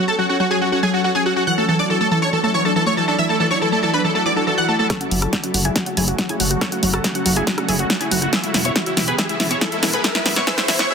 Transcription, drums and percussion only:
4.90 kick, cross-stick, snare, closed hi-hat
5.01 closed hi-hat
5.11 open hi-hat
5.22 cross-stick, closed hi-hat
5.33 kick, snare, closed hi-hat
5.44 closed hi-hat
5.54 open hi-hat
5.65 closed hi-hat
5.76 kick, snare, closed hi-hat
5.86 closed hi-hat
5.97 open hi-hat
6.08 closed hi-hat
6.18 kick, snare, closed hi-hat
6.29 closed hi-hat
6.40 open hi-hat
6.51 closed hi-hat
6.61 kick, cross-stick, snare, closed hi-hat
6.72 closed hi-hat
6.83 open hi-hat
6.94 cross-stick, closed hi-hat
7.04 kick, snare, closed hi-hat
7.15 closed hi-hat
7.26 open hi-hat
7.36 closed hi-hat
7.47 kick, snare, closed hi-hat
7.58 cross-stick, closed hi-hat
7.69 open hi-hat
7.79 closed hi-hat
7.90 kick, snare, closed hi-hat
8.01 closed hi-hat
8.11 open hi-hat
8.22 closed hi-hat
8.33 kick, snare, closed hi-hat
8.44 closed hi-hat
8.54 snare, open hi-hat
8.65 closed hi-hat
8.76 kick, snare, closed hi-hat
8.86 closed hi-hat
8.97 snare, open hi-hat
9.08 closed hi-hat
9.18 kick, snare, closed hi-hat
9.29 closed hi-hat
9.40 snare, open hi-hat
9.51 closed hi-hat
9.61 kick, snare, closed hi-hat
9.72 closed hi-hat
9.83 snare, open hi-hat
9.93 closed hi-hat
10.04 kick, snare, closed hi-hat
10.15 snare, closed hi-hat
10.26 snare, open hi-hat
10.36 snare, closed hi-hat
10.47 kick, snare, closed hi-hat
10.58 snare, closed hi-hat
10.68 snare, open hi-hat
10.79 snare, closed hi-hat

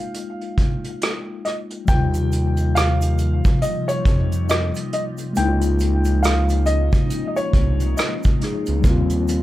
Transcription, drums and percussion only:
0.14 closed hi-hat
0.41 closed hi-hat
0.57 kick, closed hi-hat
0.84 closed hi-hat
1.01 cross-stick, closed hi-hat
1.45 cross-stick, closed hi-hat
1.70 closed hi-hat
1.88 kick, closed hi-hat, shaker
2.13 closed hi-hat, shaker
2.32 closed hi-hat, shaker
2.57 closed hi-hat, shaker
2.76 cross-stick, closed hi-hat, shaker
3.01 closed hi-hat, shaker
3.18 closed hi-hat, shaker
3.45 kick, closed hi-hat, shaker
3.62 closed hi-hat, shaker
3.89 closed hi-hat, shaker
4.05 kick, closed hi-hat
4.32 closed hi-hat, shaker
4.49 cross-stick, closed hi-hat, shaker
4.75 closed hi-hat, shaker
4.93 closed hi-hat
5.18 closed hi-hat, shaker
5.36 closed hi-hat, shaker
5.61 closed hi-hat, shaker
5.79 closed hi-hat, shaker
6.05 closed hi-hat, shaker
6.24 cross-stick, closed hi-hat, shaker
6.49 closed hi-hat, shaker
6.66 closed hi-hat, shaker
6.92 kick, closed hi-hat, shaker
7.10 closed hi-hat, shaker
7.37 closed hi-hat, shaker
7.53 kick, closed hi-hat
7.80 closed hi-hat, shaker
7.97 cross-stick, closed hi-hat, shaker
8.23 kick, closed hi-hat, shaker
8.41 cross-stick, closed hi-hat
8.66 closed hi-hat, shaker
8.84 kick, closed hi-hat, shaker
9.10 closed hi-hat, shaker
9.28 closed hi-hat, shaker

